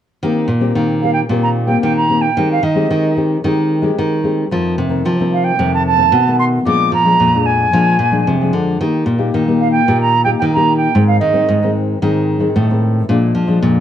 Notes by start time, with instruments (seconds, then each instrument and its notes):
0.23 nylon-string guitar D#3 A#3 C4 G4
0.48 nylon-string guitar A#2
0.60 nylon-string guitar A#3 C4 G4
0.75 nylon-string guitar A#2 D#3
1.02 nylon-string guitar A#3 C4 G4, flute F5
1.13 flute G5
1.29 nylon-string guitar A#2 D#3 A#3 C4 G4
1.42 flute A#5
1.66 nylon-string guitar A#3 C4 G4, flute G5
1.82 nylon-string guitar A#2 D#3, flute G5
1.96 flute A#5
2.09 nylon-string guitar A#3 C4 G4
2.21 flute G5
2.37 nylon-string guitar D#3 G#3 C4 G4
2.51 flute F5
2.63 nylon-string guitar D#3, flute D#5
2.75 nylon-string guitar G#3 C4 G4
2.91 nylon-string guitar D#3
3.16 nylon-string guitar G#3 C4 G4
3.44 nylon-string guitar D#3 G#3 C4 G4
3.82 nylon-string guitar G#3 C4 G4
3.98 nylon-string guitar D#3
4.23 nylon-string guitar G#3 C4 G4
4.51 nylon-string guitar F2 D#3 F3 A3 C4
4.78 nylon-string guitar C3
4.89 nylon-string guitar D#3 A3 C4
5.05 nylon-string guitar C3 F3
5.19 nylon-string guitar D#3 A3 C4
5.32 flute F5
5.44 flute G5
5.59 nylon-string guitar F2 C3 D#3 A3 C4
5.74 flute A5
5.86 flute A5
5.97 nylon-string guitar D#3 A3 C4
6.12 nylon-string guitar B2
6.27 nylon-string guitar D#3 A3
6.38 flute C6
6.65 nylon-string guitar A#2 F3 G#3 D4, flute D6
6.92 nylon-string guitar F3, flute A#5
7.04 nylon-string guitar F3 G#3 D4
7.20 nylon-string guitar F2 A#2
7.34 nylon-string guitar F3 G#3 D4
7.45 flute G#5
7.72 nylon-string guitar A#2 F3 G#3 D4
7.99 nylon-string guitar A#2
8.11 nylon-string guitar F3 G#3 D4
8.27 nylon-string guitar F2 C3
8.41 nylon-string guitar F3 G#3 D4
8.53 nylon-string guitar D3
8.81 nylon-string guitar D#3 A#3 D#4 G4
9.06 nylon-string guitar A#2
9.18 nylon-string guitar A#3 D#4 G4
9.34 nylon-string guitar A#2 D#3
9.48 nylon-string guitar A#3 D#4 G4
9.60 flute F5
9.71 flute G5
9.88 nylon-string guitar A#2 D#3 A#3 D#4 G4
10.00 flute A#5
10.24 nylon-string guitar A#3 D#4 G4, flute G5
10.39 nylon-string guitar A#2 D#3, flute G5
10.53 nylon-string guitar A#3 D#4 G4, flute A#5
10.76 flute G5
10.95 nylon-string guitar G#2 D#3 G#3 C4
11.07 flute F5
11.19 nylon-string guitar D#3, flute D#5
11.33 nylon-string guitar D#3 G#3 C4
11.49 nylon-string guitar G#2 D#3
11.63 nylon-string guitar D#3 G#3 C4
12.02 nylon-string guitar G#2 D#3 G#3 C4
12.40 nylon-string guitar D#3 G#3 C4
12.56 nylon-string guitar A2 D#3
12.70 nylon-string guitar D#3 G#3 C4
13.09 nylon-string guitar A#2 F3 G#3 D4
13.35 nylon-string guitar F3
13.47 nylon-string guitar F3 G#3 D4
13.62 nylon-string guitar F2 A#2